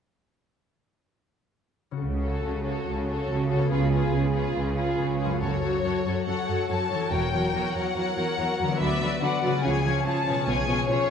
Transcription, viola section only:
2.22 2.64 F#4 soft
2.65 3.07 F#4 soft
3.08 3.49 F#4 soft
3.50 3.71 F#4 soft
3.70 3.90 F4 soft
3.91 4.33 F4 soft
4.34 4.75 F4 soft
4.76 5.19 F4 soft
5.21 5.42 F4 soft
5.42 5.63 F#3 soft
5.42 5.62 F#4 soft
5.64 5.84 F#3 soft
5.64 5.84 F#4 soft
5.85 6.06 F#3 soft
5.85 6.06 F#4 soft
6.08 6.28 F#3 soft
6.08 6.28 F#4 soft
6.30 6.49 F#3 soft
6.30 6.49 F#4 soft
6.50 6.70 F#3 soft
6.50 6.70 F#4 soft
6.71 6.91 F#3 soft
6.71 6.91 F#4 soft
6.92 7.12 F#3 soft
6.92 7.12 F#4 soft
7.13 7.32 F#3 soft
7.13 7.32 F#4 soft
7.33 7.54 F#3 soft
7.33 7.54 F#4 soft
7.55 7.74 F#3 soft
7.55 7.74 F#4 soft
7.75 7.95 F#3 soft
7.75 7.95 F#4 soft
7.96 8.16 F#3 soft
7.96 8.16 F#4 soft
8.17 8.37 F#3 soft
8.17 8.37 F#4 soft
8.38 8.59 F#3 soft
8.38 8.59 F#4 soft
8.60 8.79 F#3 soft
8.60 8.79 F#4 soft
8.80 9.00 F#3 soft
8.80 9.00 F#4 soft
9.01 9.21 F#3 soft
9.01 9.21 F#4 soft
9.22 9.42 F#3 soft
9.22 9.42 F#4 soft
9.43 9.63 F#3 soft
9.43 9.64 F#4 soft
9.64 9.82 F3 soft
9.64 9.83 C#4 soft
9.84 10.04 F3 soft
9.84 10.04 C#4 soft
10.05 10.25 F3 soft
10.05 10.25 C#4 soft
10.26 10.45 F3 soft
10.26 10.44 C#4 soft
10.46 10.67 F3 soft
10.46 10.67 C#4 soft
10.68 10.88 F3 soft
10.68 10.88 C#4 soft
10.89 11.09 F3 soft
10.89 11.09 C#4 soft

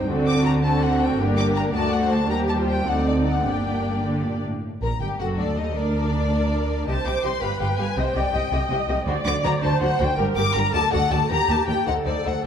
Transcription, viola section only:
0.07 0.59 C4 medium
0.07 0.59 D4 medium
0.62 1.17 C4 medium
0.62 1.16 D4 soft
1.18 1.73 A#3 medium
1.18 1.72 D4 medium
1.74 2.28 A3 medium
1.74 2.28 D4 medium
2.29 2.85 G3 medium
2.29 2.58 G4 medium
2.58 2.86 F4 soft
2.86 3.45 C4 soft
2.86 3.45 D#4 soft
3.45 4.44 A#3 soft
3.45 4.42 D4 soft
5.20 5.72 A4 soft
5.76 6.31 A#4 soft
6.32 6.86 A#4 soft
6.87 7.41 C5 medium
7.41 7.95 B4 medium
7.97 8.15 C5 medium
8.15 8.33 D5 medium
8.33 8.50 D#5 medium
8.51 9.05 D#5 medium
9.06 9.60 D5 medium
9.61 10.17 C5 medium
10.18 10.72 A#4 medium
10.73 11.30 A4 medium
11.30 11.85 G4 medium
11.86 12.45 A4 medium

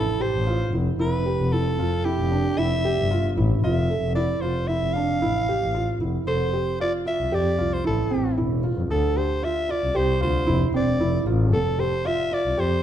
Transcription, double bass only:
0.00 0.18 A1 medium
0.34 0.69 A1 medium
0.73 0.97 F1 medium
1.00 1.23 F1 medium
1.39 1.63 F1 medium
1.78 2.02 F2 medium
2.18 2.54 F1 medium
2.58 2.81 F1 medium
2.98 3.21 G1 medium
3.37 3.61 A1 medium
3.64 3.99 F1 medium
4.03 4.38 F1 medium
4.42 4.66 F1 medium
4.82 5.06 F1 medium
5.21 5.45 A1 medium
5.62 5.97 A1 medium
6.01 6.25 F1 medium
6.28 6.51 F1 medium
7.20 7.31 C2 medium
7.33 7.44 F2 medium
7.59 7.71 C2 medium
7.85 8.09 A1 medium
8.12 8.23 A1 medium
8.38 8.73 E1 medium
8.77 8.89 F2 medium
8.90 9.14 D2 medium
9.83 9.94 C2 medium
9.96 10.07 C2 medium
10.22 10.34 D2 medium
10.48 10.72 F1 medium
10.74 11.02 E1 medium
11.00 11.24 F1 medium
11.26 11.55 A1 medium
11.53 11.77 F1 medium
12.45 12.57 C2 medium
12.58 12.70 F2 medium

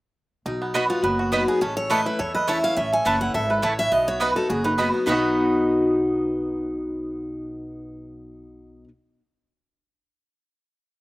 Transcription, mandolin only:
0.74 0.84 B3 medium
0.74 0.84 F#4 loud
0.74 0.84 D#5 medium
0.74 0.85 B5 medium
1.32 1.42 B3 medium
1.32 1.42 F#4 medium
1.32 1.42 D#5 loud
1.32 1.43 B5 medium
1.90 2.00 A3 medium
1.90 2.00 E4 medium
1.90 2.00 C#5 loud
1.90 2.00 A5 medium
2.47 2.57 A3 medium
2.47 2.58 E4 medium
2.47 2.58 C#5 medium
2.47 2.58 A5 loud
3.05 3.15 A3 medium
3.05 3.15 E4 loud
3.05 3.15 C#5 medium
3.05 3.16 A5 medium
3.62 3.72 A3 medium
3.62 3.73 E4 loud
3.62 3.73 C#5 medium
3.62 3.73 A5 medium
4.20 4.30 B3 medium
4.20 4.30 F#4 medium
4.20 4.30 D#5 loud
4.20 4.31 B5 medium
4.78 4.88 B3 medium
4.78 4.88 F#4 medium
4.78 4.88 D#5 medium
4.78 4.88 B5 medium
5.06 8.87 B3 medium
5.06 8.88 F#4 loud
5.06 8.89 D#5 loud
5.06 8.89 B5 medium

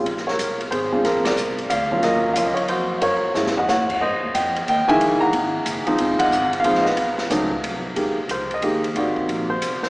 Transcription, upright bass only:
0.06 0.38 A#1 medium
0.39 0.71 C2 medium
0.71 1.03 G#1 medium
1.04 1.36 A#1 medium
1.36 1.69 C2 medium
1.70 2.02 D2 medium
2.03 2.35 D#2 medium
2.36 2.56 C#2 medium
2.57 muted upright bass stroke soft
2.68 3.01 F2 medium
3.01 3.21 F#2 medium
3.23 muted upright bass stroke soft
3.35 3.67 G#2 medium
3.68 3.88 A#2 medium
3.89 muted upright bass stroke soft
4.01 4.13 G#2 medium
4.13 4.22 G2 soft
4.23 4.33 D#2 medium
4.34 4.66 F2 medium
4.67 4.87 D#2 medium
4.88 muted upright bass stroke soft
5.00 5.20 A#1 medium
5.21 muted upright bass stroke soft
5.33 5.64 G#1 medium
5.65 5.85 F#1 medium
5.86 muted upright bass stroke soft
5.98 6.18 F1 medium
6.19 muted upright bass stroke soft
6.30 6.63 G#1 medium
6.64 6.96 A#1 medium
6.97 7.29 B1 medium
7.30 7.62 C#2 medium
7.63 7.95 C2 medium
7.96 8.16 F2 medium
8.17 muted upright bass stroke soft
8.29 8.61 C#2 medium
8.62 8.94 D#2 medium
8.95 9.27 G#1 medium
9.28 9.60 A#1 medium
9.61 9.81 C2 medium
9.82 muted upright bass stroke soft

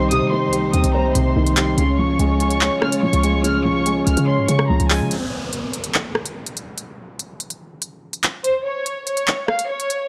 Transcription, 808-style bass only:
0.00 0.23 C2 loud
0.21 0.49 D#3 loud
0.48 0.72 C2 loud
0.74 0.84 D#2 loud
0.84 1.14 C2 loud
1.15 1.35 C2 loud
1.36 1.76 C2 loud
1.78 2.18 C#2 loud
2.19 2.69 C#2 loud
3.13 4.03 C#2 loud
4.07 4.17 C#2 loud
4.17 4.40 C#3 loud
4.38 4.48 G#2 loud
4.49 4.69 C#3 loud
4.69 4.79 C#2 loud
4.80 5.02 C#2 loud
5.01 5.11 C#3 loud

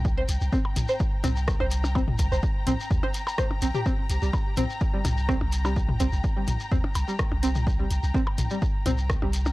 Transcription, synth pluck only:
0.17 0.23 C5 loud
0.52 0.58 C4 loud
0.89 0.94 C5 loud
1.24 1.30 C4 loud
1.60 1.66 C5 loud
1.95 2.01 C4 loud
2.32 2.37 C5 loud
2.67 2.73 C4 loud
3.03 3.08 C5 loud
3.38 3.47 C5 medium
3.62 3.68 C4 medium
3.75 3.80 G4 loud
3.86 3.92 C4 loud
4.22 4.30 G3 medium
4.57 4.63 C4 loud
4.93 5.01 G3 medium
5.29 5.34 C4 loud
5.65 5.73 G3 medium
6.00 6.06 C4 loud
6.37 6.44 G3 medium
6.72 6.77 C4 medium
7.08 7.16 G3 medium
7.43 7.49 C4 loud
7.79 7.87 G3 medium
8.14 8.20 C4 loud
8.51 8.59 G3 medium
8.86 8.92 C4 loud
9.22 9.30 G3 medium

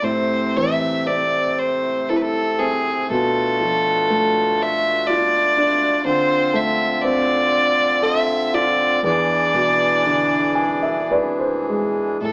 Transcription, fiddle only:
0.04 0.58 C5 medium
0.57 1.09 E5 medium
1.07 1.60 D5 medium
1.59 2.11 C5 medium
2.09 2.18 A4 medium
2.16 2.23 B4 medium
2.22 2.61 A4 medium
2.59 3.09 G#4 medium
3.11 4.64 A4 medium
4.62 5.08 E5 medium
5.07 6.04 D5 medium
6.06 6.57 C5 medium
6.55 6.94 E5 medium
6.94 7.03 E5 medium
7.02 8.05 D5 medium
8.04 8.56 E5 medium
8.54 9.04 D5 medium
9.05 11.08 D5 medium
12.22 12.32 A4 medium

